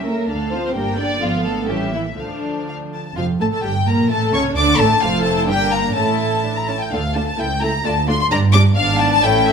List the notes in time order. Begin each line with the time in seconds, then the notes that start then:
Already playing: C#2 E5
0.07 A3 A#3 C#4 A#4
0.28 D2 D3 A3 D4 A4 F5
0.52 F3 C4 F4 C5
0.64 C4 C5
0.75 G1 G3 A#3 D4 A#4 G5
0.98 D3 A#3 D4 D5
1.20 G#1 D3 F3 B3 F4 F5
1.45 A3 A4
1.57 A3 A4
1.68 A1 E3 G3 C#4 G4 E5
1.93 E3 A#3 E4
2.17 D2 D3 F3 A3 D4 F5
2.68 F5
2.93 A5
3.07 A5
3.16 F1 F2 F3 F4 F5
3.40 A1 A2 A3 A4 A5
3.51 A2 A3 A4 A5
3.63 G1 G2 G3 G4 G5
3.86 A#1 A#2 A#3 A#4 A#5
4.09 A1 A2 A3 A4 A5
4.33 C#2 C#3 C#4 C#5 C#6
4.55 D2 D3 D4 D5 D6
4.77 A1 A2 A3 A4 A5
5.01 F1 F2 A3 F4 A4 C5 F5
5.23 E4 A5
5.37 A5
5.47 G1 G2 A#3 D4 G4 A#4 G5
5.71 F4 A#5
5.95 A1 A2 A3 C#4 E4 A4 A5
6.43 D4
6.56 A#5
6.68 C#4 A5
6.81 G5
6.91 D2 A3 D4 F4 A4 F5
7.15 A3 D4 F4 A4 A5
7.27 A5
7.37 C#2 A3 E4 A4 G5
7.61 A3 E4 A4 A#5
7.84 D2 A3 D4 F4 D5 A5
8.07 A3 D4 F4 D5 C6
8.21 C6
8.30 G1 G2 G3 D4 D5 A#5
8.53 G3 D4 D5 D6
8.75 G#1 G#2 B3 D4 D5 F5
8.99 A5
9.12 A5
9.22 A1 A2 A3 C#4 E4 A4 G5
9.47 E5